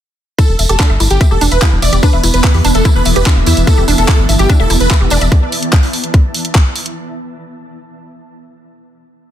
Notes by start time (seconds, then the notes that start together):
0.38 E3 B3 E4 A4, kick, closed hi-hat, tambourine
0.49 E1
0.57 E1 E4 E5, open hi-hat, tambourine
0.69 E1 G4 A4, closed hi-hat, tambourine
0.77 D4 E5, kick, clap, closed hi-hat, tambourine
0.90 G1 E5 B5
1.00 G1 E4, open hi-hat, tambourine
1.10 G1 G4, closed hi-hat, tambourine
1.21 E5, kick, closed hi-hat, tambourine
1.31 E1 G4 A4
1.41 E1 D4, open hi-hat, tambourine
1.51 E1 B4 E5, closed hi-hat, tambourine
1.62 E4, kick, clap, closed hi-hat, tambourine
1.72 E1
1.82 E1 D5 E5, open hi-hat, tambourine
1.93 E1 G4, closed hi-hat, tambourine
2.03 D4 B4, kick, closed hi-hat, tambourine
2.13 E1 E5
2.23 E1 E4, open hi-hat, tambourine
2.34 E1 B4, closed hi-hat, tambourine
2.44 E5, kick, clap, closed hi-hat
2.54 E2 G4, open hi-hat
2.64 E1 D4, open hi-hat, tambourine
2.74 E1 A4 E5, closed hi-hat, tambourine
2.85 E4, kick, closed hi-hat, tambourine
2.95 E1 B4
3.05 E1 E5, open hi-hat, tambourine
3.15 E1 G4 B4, closed hi-hat, tambourine
3.26 D4, kick, clap, closed hi-hat, tambourine
3.37 E1 E5
3.41 A5
3.46 E2 E4 E5, open hi-hat, tambourine
3.57 E1, closed hi-hat, tambourine
3.67 A4 E5, kick, closed hi-hat, tambourine
3.78 E1 G4
3.88 E1 D4, open hi-hat, tambourine
3.98 E1 A4 E5, closed hi-hat, tambourine
4.08 E4, kick, clap, closed hi-hat, tambourine
4.19 G1
4.29 G1 E5, open hi-hat, tambourine
4.38 G1 G4, closed hi-hat, tambourine
4.50 D4, kick, closed hi-hat, tambourine
4.60 E1 A4 E5
4.70 E1 E4, open hi-hat, tambourine
4.80 E1 B4, closed hi-hat, tambourine
4.91 E5, kick, clap, closed hi-hat
5.01 E1 G4
5.10 E1 D4 D5, open hi-hat, tambourine
5.21 E1 E5, closed hi-hat, tambourine
5.32 kick, closed hi-hat
5.52 open hi-hat
5.63 closed hi-hat
5.73 kick, clap, closed hi-hat
5.83 open hi-hat
5.93 open hi-hat
6.04 closed hi-hat
6.14 kick, closed hi-hat
6.34 open hi-hat
6.45 closed hi-hat
6.55 kick, clap, closed hi-hat
6.76 open hi-hat
6.86 closed hi-hat